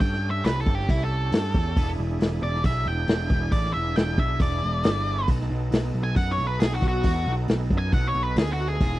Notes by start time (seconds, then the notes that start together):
Already playing: C#4 G4 A4
0.00 G2 G5, kick, open hi-hat
0.13 snare
0.31 E5
0.44 C2 B4, snare, open hi-hat
0.61 A4
0.66 G1, kick
0.75 G4
0.79 snare
0.89 C2 E4, kick, open hi-hat
1.04 A4
1.32 G2, snare, open hi-hat
1.54 E2, kick
1.76 E1 D4 E4 G#4, kick, open hi-hat
1.98 E1
2.20 E1, snare, open hi-hat
2.42 E1 D5
2.55 snare
2.64 B1 E5, kick, open hi-hat
2.86 E1 G5
3.08 E1, snare, open hi-hat
3.30 E1, kick
3.52 A1 D5, kick, open hi-hat
3.65 snare
3.73 E1 E5
3.96 E1 G5, snare, open hi-hat
4.18 B1 E5, kick
4.40 E1 D5, kick, open hi-hat
4.64 E1
4.84 G1, snare, open hi-hat
5.28 B1 B3 D#4 A4, kick, open hi-hat
5.41 snare
5.51 B1
5.72 B1, snare, open hi-hat
5.94 B1
6.04 G#5
6.16 F#2 F#5, kick, open hi-hat
6.32 C#5
6.38 B1
6.47 B4
6.60 B1 G#4, snare, open hi-hat
6.74 F#4
6.82 B1, kick
6.88 F#4
7.03 E2, kick, open hi-hat
7.26 B1
7.48 B1, snare, open hi-hat
7.70 F#2, kick
7.78 G#5
7.92 B1 F#5, kick, open hi-hat
8.07 C#5
8.15 B1
8.23 B4
8.36 D2 G#4, snare, open hi-hat
8.52 F#4
8.68 G#4
8.80 E1 D#4 F4 A4, kick, open hi-hat
8.93 snare